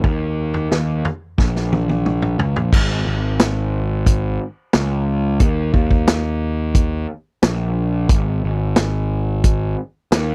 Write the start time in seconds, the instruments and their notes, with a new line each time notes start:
0.04 picked electric bass D#2, kick, floor tom
0.54 floor tom
0.71 picked electric bass D#2, snare
1.05 floor tom
1.38 picked electric bass A#1, kick, snare
1.56 snare
1.72 high tom
1.89 high tom
2.06 mid tom
2.22 mid tom
2.39 picked electric bass C#2, floor tom
2.56 picked electric bass A#1, floor tom
2.73 picked electric bass G#1, kick, crash
3.07 picked electric bass G#1
3.39 snare, closed hi-hat
4.06 kick, closed hi-hat
4.73 picked electric bass C#2, snare, closed hi-hat
5.40 picked electric bass D#2, kick, closed hi-hat
5.74 picked electric bass D#2, kick
5.91 kick
6.07 snare, closed hi-hat
6.75 kick, closed hi-hat
7.42 picked electric bass A#1, snare, closed hi-hat
8.09 picked electric bass G#1, kick, closed hi-hat
8.44 picked electric bass G#1
8.76 snare, closed hi-hat
9.44 kick, closed hi-hat
10.12 picked electric bass D#2, snare, closed hi-hat